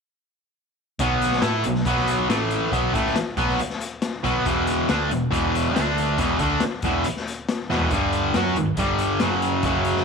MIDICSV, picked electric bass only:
0, 0, Header, 1, 3, 480
1, 0, Start_track
1, 0, Key_signature, 2, "minor"
1, 0, Tempo, 431655
1, 1121, Time_signature, 4, 2, 24, 8
1, 11170, End_track
2, 0, Start_track
2, 0, Title_t, "Picked electric bass"
2, 0, Program_c, 0, 34
2, 1102, Note_on_c, 0, 35, 88
2, 1558, Note_off_c, 0, 35, 0
2, 1586, Note_on_c, 0, 45, 92
2, 1817, Note_off_c, 0, 45, 0
2, 1836, Note_on_c, 0, 35, 74
2, 2059, Note_off_c, 0, 35, 0
2, 2065, Note_on_c, 0, 35, 83
2, 2520, Note_off_c, 0, 35, 0
2, 2551, Note_on_c, 0, 33, 92
2, 3003, Note_off_c, 0, 33, 0
2, 3028, Note_on_c, 0, 35, 87
2, 3258, Note_off_c, 0, 35, 0
2, 3269, Note_on_c, 0, 33, 91
2, 3499, Note_off_c, 0, 33, 0
2, 3746, Note_on_c, 0, 35, 96
2, 3977, Note_off_c, 0, 35, 0
2, 4724, Note_on_c, 0, 35, 90
2, 4948, Note_off_c, 0, 35, 0
2, 4960, Note_on_c, 0, 28, 83
2, 5409, Note_off_c, 0, 28, 0
2, 5445, Note_on_c, 0, 38, 89
2, 5668, Note_off_c, 0, 38, 0
2, 5687, Note_on_c, 0, 28, 73
2, 5909, Note_off_c, 0, 28, 0
2, 5919, Note_on_c, 0, 28, 86
2, 6368, Note_off_c, 0, 28, 0
2, 6425, Note_on_c, 0, 38, 85
2, 6862, Note_off_c, 0, 38, 0
2, 6880, Note_on_c, 0, 28, 92
2, 7105, Note_off_c, 0, 28, 0
2, 7111, Note_on_c, 0, 38, 84
2, 7340, Note_off_c, 0, 38, 0
2, 7596, Note_on_c, 0, 28, 88
2, 7823, Note_off_c, 0, 28, 0
2, 8581, Note_on_c, 0, 28, 82
2, 8796, Note_off_c, 0, 28, 0
2, 8804, Note_on_c, 0, 31, 92
2, 9250, Note_off_c, 0, 31, 0
2, 9289, Note_on_c, 0, 42, 82
2, 9510, Note_off_c, 0, 42, 0
2, 9537, Note_on_c, 0, 31, 71
2, 9753, Note_off_c, 0, 31, 0
2, 9764, Note_on_c, 0, 31, 86
2, 10209, Note_off_c, 0, 31, 0
2, 10256, Note_on_c, 0, 30, 85
2, 10696, Note_off_c, 0, 30, 0
2, 10710, Note_on_c, 0, 30, 95
2, 11161, Note_off_c, 0, 30, 0
2, 11170, End_track
3, 0, Start_track
3, 0, Title_t, "Muted picked electric bass strokes"
3, 7378, Note_on_c, 9, 29, 41
3, 7489, Note_off_c, 9, 29, 0
3, 11170, End_track
0, 0, End_of_file